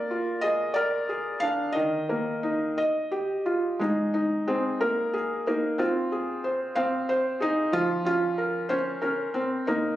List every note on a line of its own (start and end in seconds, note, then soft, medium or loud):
0.00 1.09 A#3 medium
0.00 0.44 D5 medium
0.11 1.42 F4 medium
0.41 1.08 G#4 medium
0.41 0.76 D#5 loud
0.74 1.75 A#4 medium
0.74 1.43 D5 loud
1.09 1.75 G#4 medium
1.40 1.75 D4 medium
1.40 1.75 F5 loud
1.72 2.77 D#3 medium
1.72 2.76 D#5 medium
2.09 2.77 A#3 medium
2.43 2.77 D#4 medium
2.78 3.80 D#5 medium
3.11 3.80 G4 medium
3.46 3.80 F4 medium
3.79 5.14 G#3 medium
3.79 4.12 D#4 medium
4.14 5.46 D#4 medium
4.48 4.82 C4 medium
4.48 5.12 G#4 medium
4.81 5.46 A#3 medium
4.81 5.80 A#4 medium
5.14 5.80 G#4 medium
5.47 5.81 A#3 medium
5.47 5.80 D#4 medium
5.78 6.72 C4 medium
5.78 7.09 F4 medium
6.12 7.39 G#4 medium
6.44 7.08 C5 medium
6.75 7.43 C4 medium
6.75 7.73 F5 medium
7.09 7.73 C5 medium
7.40 7.75 D#4 loud
7.40 7.73 G#4 medium
7.72 9.02 F3 medium
7.72 8.05 F4 loud
8.05 8.68 C#4 medium
8.05 8.72 F4 loud
8.38 9.00 A#4 medium
8.69 9.01 C#4 medium
8.69 9.67 C5 medium
9.02 9.36 C#4 medium
9.02 9.67 A#4 medium
9.34 9.65 C4 medium
9.67 9.96 A#3 medium
9.67 9.96 D#4 medium